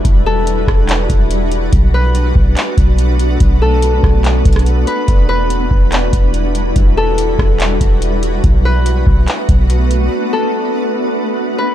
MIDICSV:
0, 0, Header, 1, 5, 480
1, 0, Start_track
1, 0, Key_signature, 1, "minor"
1, 0, Tempo, 419580
1, 54, Time_signature, 4, 2, 24, 8
1, 13439, End_track
2, 0, Start_track
2, 0, Title_t, "Harp"
2, 0, Program_c, 0, 46
2, 0, Note_on_c, 0, 71, 85
2, 301, Note_on_c, 0, 69, 88
2, 719, Note_off_c, 0, 71, 0
2, 2220, Note_on_c, 0, 71, 84
2, 2813, Note_off_c, 0, 69, 0
2, 4138, Note_on_c, 0, 69, 74
2, 4565, Note_off_c, 0, 71, 0
2, 5573, Note_on_c, 0, 71, 83
2, 6045, Note_off_c, 0, 71, 0
2, 6049, Note_on_c, 0, 71, 89
2, 6651, Note_off_c, 0, 69, 0
2, 7978, Note_on_c, 0, 69, 90
2, 8394, Note_off_c, 0, 71, 0
2, 9898, Note_on_c, 0, 71, 87
2, 10490, Note_off_c, 0, 69, 0
2, 11816, Note_on_c, 0, 69, 72
2, 12242, Note_off_c, 0, 71, 0
2, 13252, Note_on_c, 0, 71, 77
2, 13439, Note_off_c, 0, 69, 0
2, 13439, Note_off_c, 0, 71, 0
2, 13439, End_track
3, 0, Start_track
3, 0, Title_t, "Ambient pad"
3, 0, Program_c, 1, 92
3, 0, Note_on_c, 1, 55, 79
3, 0, Note_on_c, 1, 62, 74
3, 0, Note_on_c, 1, 64, 75
3, 0, Note_on_c, 1, 66, 73
3, 0, Note_on_c, 1, 71, 88
3, 1936, Note_off_c, 1, 55, 0
3, 1936, Note_off_c, 1, 64, 0
3, 1974, Note_on_c, 1, 57, 79
3, 1974, Note_on_c, 1, 59, 75
3, 5770, Note_off_c, 1, 66, 0
3, 5775, Note_off_c, 1, 57, 0
3, 5776, Note_off_c, 1, 59, 0
3, 5815, Note_on_c, 1, 64, 77
3, 5816, Note_on_c, 1, 55, 80
3, 5817, Note_on_c, 1, 66, 76
3, 9609, Note_off_c, 1, 62, 0
3, 9609, Note_off_c, 1, 71, 0
3, 9616, Note_off_c, 1, 55, 0
3, 9616, Note_off_c, 1, 64, 0
3, 9655, Note_on_c, 1, 57, 83
3, 9655, Note_on_c, 1, 62, 75
3, 9655, Note_on_c, 1, 71, 89
3, 9657, Note_on_c, 1, 59, 72
3, 13439, Note_off_c, 1, 57, 0
3, 13439, Note_off_c, 1, 59, 0
3, 13439, Note_off_c, 1, 62, 0
3, 13439, Note_off_c, 1, 66, 0
3, 13439, Note_off_c, 1, 71, 0
3, 13439, End_track
4, 0, Start_track
4, 0, Title_t, "808-style bass"
4, 0, Program_c, 2, 38
4, 57, Note_on_c, 2, 28, 114
4, 746, Note_off_c, 2, 28, 0
4, 774, Note_on_c, 2, 28, 106
4, 1235, Note_off_c, 2, 28, 0
4, 1255, Note_on_c, 2, 28, 108
4, 1946, Note_off_c, 2, 28, 0
4, 1976, Note_on_c, 2, 35, 114
4, 2666, Note_off_c, 2, 35, 0
4, 2693, Note_on_c, 2, 35, 103
4, 2924, Note_off_c, 2, 35, 0
4, 3174, Note_on_c, 2, 35, 110
4, 3865, Note_off_c, 2, 35, 0
4, 3895, Note_on_c, 2, 35, 114
4, 4586, Note_off_c, 2, 35, 0
4, 4613, Note_on_c, 2, 35, 102
4, 5074, Note_off_c, 2, 35, 0
4, 5095, Note_on_c, 2, 35, 106
4, 5555, Note_off_c, 2, 35, 0
4, 5814, Note_on_c, 2, 28, 115
4, 6505, Note_off_c, 2, 28, 0
4, 6531, Note_on_c, 2, 28, 103
4, 6993, Note_off_c, 2, 28, 0
4, 7013, Note_on_c, 2, 28, 108
4, 7705, Note_off_c, 2, 28, 0
4, 7734, Note_on_c, 2, 28, 114
4, 8425, Note_off_c, 2, 28, 0
4, 8451, Note_on_c, 2, 28, 105
4, 8913, Note_off_c, 2, 28, 0
4, 8933, Note_on_c, 2, 28, 109
4, 9624, Note_off_c, 2, 28, 0
4, 9653, Note_on_c, 2, 35, 111
4, 10345, Note_off_c, 2, 35, 0
4, 10372, Note_on_c, 2, 35, 99
4, 10603, Note_off_c, 2, 35, 0
4, 10853, Note_on_c, 2, 35, 108
4, 11545, Note_off_c, 2, 35, 0
4, 13439, End_track
5, 0, Start_track
5, 0, Title_t, "Drums"
5, 56, Note_on_c, 9, 36, 124
5, 56, Note_on_c, 9, 42, 76
5, 170, Note_off_c, 9, 36, 0
5, 170, Note_off_c, 9, 42, 0
5, 538, Note_on_c, 9, 42, 80
5, 652, Note_off_c, 9, 42, 0
5, 773, Note_on_c, 9, 36, 98
5, 782, Note_on_c, 9, 37, 109
5, 888, Note_off_c, 9, 36, 0
5, 896, Note_off_c, 9, 37, 0
5, 1017, Note_on_c, 9, 42, 69
5, 1019, Note_on_c, 9, 39, 109
5, 1131, Note_off_c, 9, 42, 0
5, 1133, Note_off_c, 9, 39, 0
5, 1254, Note_on_c, 9, 36, 89
5, 1255, Note_on_c, 9, 42, 75
5, 1369, Note_off_c, 9, 36, 0
5, 1369, Note_off_c, 9, 42, 0
5, 1494, Note_on_c, 9, 42, 75
5, 1608, Note_off_c, 9, 42, 0
5, 1733, Note_on_c, 9, 42, 72
5, 1848, Note_off_c, 9, 42, 0
5, 1974, Note_on_c, 9, 42, 79
5, 1975, Note_on_c, 9, 36, 121
5, 2088, Note_off_c, 9, 42, 0
5, 2089, Note_off_c, 9, 36, 0
5, 2457, Note_on_c, 9, 42, 83
5, 2571, Note_off_c, 9, 42, 0
5, 2693, Note_on_c, 9, 36, 102
5, 2807, Note_off_c, 9, 36, 0
5, 2937, Note_on_c, 9, 42, 70
5, 2939, Note_on_c, 9, 39, 111
5, 3051, Note_off_c, 9, 42, 0
5, 3053, Note_off_c, 9, 39, 0
5, 3175, Note_on_c, 9, 36, 89
5, 3176, Note_on_c, 9, 42, 71
5, 3289, Note_off_c, 9, 36, 0
5, 3290, Note_off_c, 9, 42, 0
5, 3415, Note_on_c, 9, 42, 73
5, 3529, Note_off_c, 9, 42, 0
5, 3654, Note_on_c, 9, 42, 70
5, 3769, Note_off_c, 9, 42, 0
5, 3893, Note_on_c, 9, 42, 76
5, 3895, Note_on_c, 9, 36, 125
5, 4008, Note_off_c, 9, 42, 0
5, 4009, Note_off_c, 9, 36, 0
5, 4375, Note_on_c, 9, 42, 86
5, 4489, Note_off_c, 9, 42, 0
5, 4612, Note_on_c, 9, 36, 102
5, 4619, Note_on_c, 9, 37, 103
5, 4727, Note_off_c, 9, 36, 0
5, 4734, Note_off_c, 9, 37, 0
5, 4857, Note_on_c, 9, 42, 67
5, 4859, Note_on_c, 9, 39, 112
5, 4971, Note_off_c, 9, 42, 0
5, 4973, Note_off_c, 9, 39, 0
5, 5095, Note_on_c, 9, 36, 90
5, 5095, Note_on_c, 9, 42, 72
5, 5177, Note_off_c, 9, 42, 0
5, 5177, Note_on_c, 9, 42, 58
5, 5209, Note_off_c, 9, 36, 0
5, 5218, Note_on_c, 9, 37, 99
5, 5254, Note_off_c, 9, 42, 0
5, 5254, Note_on_c, 9, 42, 45
5, 5332, Note_off_c, 9, 37, 0
5, 5335, Note_off_c, 9, 42, 0
5, 5335, Note_on_c, 9, 42, 75
5, 5450, Note_off_c, 9, 42, 0
5, 5574, Note_on_c, 9, 42, 71
5, 5688, Note_off_c, 9, 42, 0
5, 5812, Note_on_c, 9, 42, 75
5, 5814, Note_on_c, 9, 36, 124
5, 5927, Note_off_c, 9, 42, 0
5, 5928, Note_off_c, 9, 36, 0
5, 6295, Note_on_c, 9, 42, 81
5, 6409, Note_off_c, 9, 42, 0
5, 6531, Note_on_c, 9, 36, 101
5, 6646, Note_off_c, 9, 36, 0
5, 6775, Note_on_c, 9, 42, 69
5, 6777, Note_on_c, 9, 39, 116
5, 6889, Note_off_c, 9, 42, 0
5, 6891, Note_off_c, 9, 39, 0
5, 7013, Note_on_c, 9, 36, 88
5, 7013, Note_on_c, 9, 42, 73
5, 7127, Note_off_c, 9, 36, 0
5, 7128, Note_off_c, 9, 42, 0
5, 7252, Note_on_c, 9, 42, 76
5, 7366, Note_off_c, 9, 42, 0
5, 7492, Note_on_c, 9, 42, 72
5, 7607, Note_off_c, 9, 42, 0
5, 7732, Note_on_c, 9, 42, 78
5, 7733, Note_on_c, 9, 36, 123
5, 7846, Note_off_c, 9, 42, 0
5, 7848, Note_off_c, 9, 36, 0
5, 8214, Note_on_c, 9, 42, 83
5, 8328, Note_off_c, 9, 42, 0
5, 8451, Note_on_c, 9, 36, 100
5, 8458, Note_on_c, 9, 37, 109
5, 8565, Note_off_c, 9, 36, 0
5, 8572, Note_off_c, 9, 37, 0
5, 8692, Note_on_c, 9, 42, 69
5, 8695, Note_on_c, 9, 39, 113
5, 8807, Note_off_c, 9, 42, 0
5, 8809, Note_off_c, 9, 39, 0
5, 8932, Note_on_c, 9, 36, 87
5, 8933, Note_on_c, 9, 42, 75
5, 9047, Note_off_c, 9, 36, 0
5, 9048, Note_off_c, 9, 42, 0
5, 9174, Note_on_c, 9, 42, 76
5, 9288, Note_off_c, 9, 42, 0
5, 9412, Note_on_c, 9, 42, 77
5, 9527, Note_off_c, 9, 42, 0
5, 9653, Note_on_c, 9, 36, 123
5, 9653, Note_on_c, 9, 42, 73
5, 9767, Note_off_c, 9, 42, 0
5, 9768, Note_off_c, 9, 36, 0
5, 10135, Note_on_c, 9, 42, 83
5, 10249, Note_off_c, 9, 42, 0
5, 10371, Note_on_c, 9, 36, 101
5, 10486, Note_off_c, 9, 36, 0
5, 10614, Note_on_c, 9, 42, 70
5, 10616, Note_on_c, 9, 39, 109
5, 10728, Note_off_c, 9, 42, 0
5, 10731, Note_off_c, 9, 39, 0
5, 10853, Note_on_c, 9, 36, 92
5, 10854, Note_on_c, 9, 42, 72
5, 10967, Note_off_c, 9, 36, 0
5, 10969, Note_off_c, 9, 42, 0
5, 11094, Note_on_c, 9, 42, 77
5, 11209, Note_off_c, 9, 42, 0
5, 11334, Note_on_c, 9, 42, 78
5, 11448, Note_off_c, 9, 42, 0
5, 13439, End_track
0, 0, End_of_file